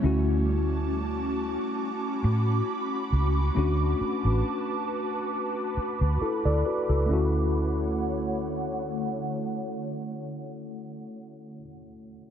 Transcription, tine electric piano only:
0.02 A3 C#4 E4 F#4
3.55 A3 C#4 D4 F#4
6.21 E4 A4
6.45 A4 D5
6.66 F#4 B4
6.89 E4 A4
7.06 A3 C#4
7.11 E4 F#4

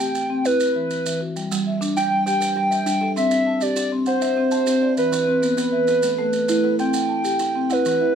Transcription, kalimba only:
1.51 G3
1.97 D4
2.26 C5
2.41 B4
2.56 G4
2.71 E5
2.86 D4
3.01 G4
3.31 C4
3.76 G4
4.07 F#5
4.22 E5
4.36 C5
4.52 A5
4.67 G4
4.82 C4
5.12 E3
5.57 B3
5.88 A4
6.03 A3
6.19 A4
6.49 E4
6.64 A4
6.95 C4
7.40 G4
7.70 F#5
7.86 E3
8.01 E4

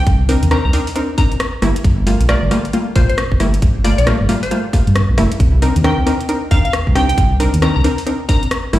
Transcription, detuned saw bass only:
0.07 C2
0.43 D#2
0.65 C2
1.62 G1
1.84 G1
2.21 A#1
2.43 G1
2.96 A#1
3.32 G1
3.62 G1
3.98 A#1
4.21 G1
4.87 G2
5.09 A#1
5.18 F1
5.40 C2
5.76 D#2
5.98 C2
6.51 D#2
6.87 C2
7.18 C2
7.54 D#2
7.76 C2
8.73 G1

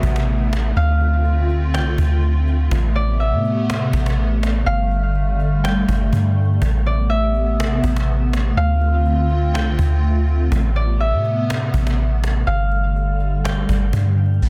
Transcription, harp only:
Already playing: D5 E5
0.77 F5
1.74 G5
2.96 D5
3.20 E5
4.66 F5
5.64 G5
6.86 D5
7.10 E5
8.57 F5
9.54 G5
10.76 D5
11.00 E5
12.47 F5
13.44 G5

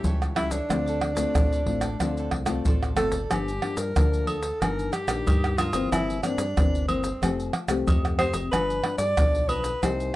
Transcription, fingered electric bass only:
0.04 C#2
0.69 D2
1.35 A1
1.66 A1
2.00 D2
2.31 C2
2.66 A1
2.97 G1
3.31 G1
3.77 G2
3.96 D2
4.61 G1
5.08 A#1
5.27 G2
5.73 G1
5.92 G1
6.38 G2
6.56 G1
7.22 F1
7.68 C2
7.87 F2
8.33 F1
8.53 G1
8.98 G2
9.18 B1
9.83 C2

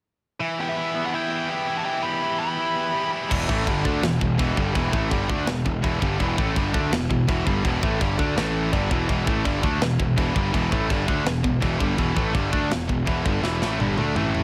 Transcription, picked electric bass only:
3.31 E1
3.49 A1
3.67 G1
3.85 D2
4.02 E1
4.21 E1
4.39 E1
4.57 G1
4.75 E1
4.93 A1
5.11 G1
5.30 D2
5.47 E1
5.66 E1
5.84 E1
6.02 G1
6.20 E1
6.38 A1
6.56 G1
6.74 D2
6.92 E1
7.10 E1
7.28 E1
7.46 G1
7.65 E1
7.83 A1
8.01 G1
8.19 D2
8.36 A1
8.73 G1
8.91 E1
9.09 E1
9.27 A1
9.45 G1
9.63 D2
9.81 E1
10.00 E1
10.17 E1
10.35 G1
10.54 E1
10.72 A1
10.90 G1
11.08 D2
11.25 E1
11.44 E1
11.62 E1
11.81 G1
11.98 E1
12.16 A1
12.35 G1
12.53 D2
12.70 E1
12.89 E1
13.07 E1
13.25 G1
13.43 E1
13.61 A1
13.79 G1
13.97 D2
14.15 A1

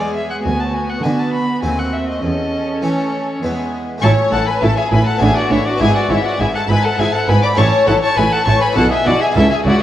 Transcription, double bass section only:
4.02 A1
4.32 A1
4.62 A1
4.92 A1
5.21 A1
5.51 A1
5.80 G#1
6.10 G#1
6.40 G#1
6.69 G#1
6.99 G#1
7.28 G#1
7.58 A1
7.88 A1
8.17 A1
8.47 A1
8.76 B1
9.06 B1
9.36 C#2
9.66 C#2

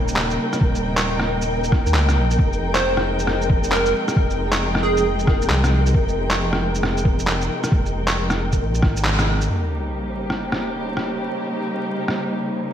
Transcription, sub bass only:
Already playing: D#1
0.61 D#1
1.86 D#2
1.95 C#2
2.16 A#1
2.39 F1
4.16 F1
5.49 C2
5.94 F1
7.72 F1
8.61 A#1
8.83 G#1

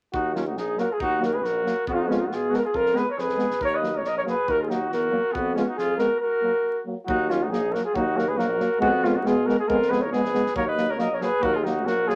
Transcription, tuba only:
0.13 D#2
0.57 A#1
1.02 D#2
1.44 A#1
1.87 F2
2.31 B2
2.74 F2
3.17 F2
3.61 D#2
4.05 A#1
4.48 D#2
4.92 E2
5.36 F2
5.79 F2
7.09 D#2
7.52 A#1
7.95 D#2
8.39 A#1
8.82 F2
9.26 B2
9.70 F2
10.13 A#1
10.56 D#2
10.99 A#1
11.43 D#2
11.87 A#1

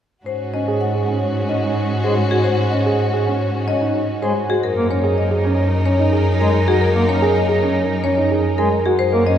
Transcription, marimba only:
0.26 C5
0.54 D#5
0.81 F#5
1.49 D#5
2.04 C5
2.31 G#4
2.44 C5
2.72 D#5
2.99 F#5
3.68 D#5
4.23 C5
4.50 G#4
4.63 A#4
4.91 C#5
5.18 D#5
5.85 C#5
6.41 A#4
6.68 G#4
6.81 A#4
7.09 C#5
7.36 D#5
8.04 C#5
8.58 A#4
8.86 G#4
8.99 C5
9.27 D#5

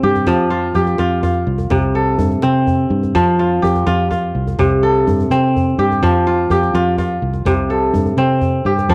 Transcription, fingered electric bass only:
0.03 G2
0.27 F2
0.75 F2
0.99 F2
1.47 C2
1.71 C2
2.18 G2
2.43 C3
2.90 G2
3.15 F2
3.63 F2
3.87 F2
4.35 C2
4.59 C2
5.07 G2
5.30 C3
5.78 G2
6.02 F2
6.50 F2
6.74 F2
7.22 C2
7.45 C2
7.94 G2
8.17 C3
8.65 G2
8.89 F2

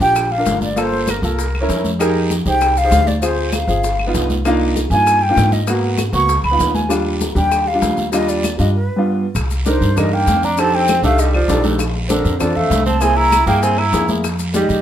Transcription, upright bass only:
0.00 A#1
0.46 G1
1.22 C2
1.69 F2
2.46 C2
2.91 D2
3.67 G1
4.14 C2
4.90 G2
5.36 G#2
6.13 C#2
6.43 C#2
6.59 D#2
7.35 D#2
7.82 D#2
8.59 G2
9.35 C2
9.81 G2
10.27 F2
11.02 C2
11.48 A#1
12.24 F2
12.70 C2
13.46 G2
13.93 F2
14.69 F2

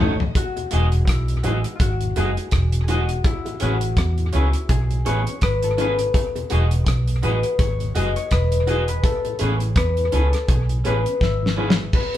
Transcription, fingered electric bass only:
Already playing: G#1
0.73 E1
1.08 B1
1.45 A1
1.81 G#1
2.18 F#1
2.53 E1
3.62 A1
3.98 E2
4.35 C#2
4.70 B1
5.08 A1
5.43 G#1
6.52 E1
6.87 B1
7.24 A1
7.60 G#1
7.96 F#1
8.32 E1
9.41 A1
9.77 E2
10.14 C#2
10.49 B1
10.87 A1
11.22 G#1

